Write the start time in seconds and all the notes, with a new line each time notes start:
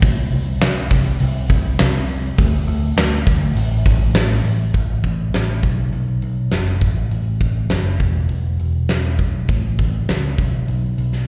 0.02 C2, kick, open hi-hat
0.32 C2, open hi-hat
0.61 C2, snare, open hi-hat
0.91 C2, kick, snare, open hi-hat
1.20 C2, open hi-hat
1.50 C2, kick, open hi-hat
1.79 C2, snare, open hi-hat
2.08 open hi-hat
2.38 D2, kick, open hi-hat
2.67 D2, open hi-hat
2.97 D2, snare, open hi-hat
3.27 D2, kick, open hi-hat
3.56 A1, open hi-hat
3.86 A1, kick, open hi-hat
4.14 A1, snare, open hi-hat
4.44 A1, open hi-hat
4.74 A1, kick, open hi-hat
5.04 A1, kick, open hi-hat
5.33 A1, snare, open hi-hat
5.63 B1, kick, open hi-hat
5.93 B1, open hi-hat
6.22 B1, open hi-hat
6.51 F#1, snare, open hi-hat
6.81 A1, kick, open hi-hat
7.11 A1, open hi-hat
7.41 kick, open hi-hat
7.70 F#1, snare, open hi-hat
8.00 E1, kick, open hi-hat
8.29 E1, open hi-hat
8.59 E1, open hi-hat
8.89 E1, snare, open hi-hat
9.19 B1, kick, open hi-hat
9.48 A1, kick, open hi-hat
9.79 A1, kick, open hi-hat
10.09 C#2, snare, open hi-hat
10.38 B1, kick, open hi-hat
10.68 B1, open hi-hat
10.98 B1, open hi-hat
11.13 snare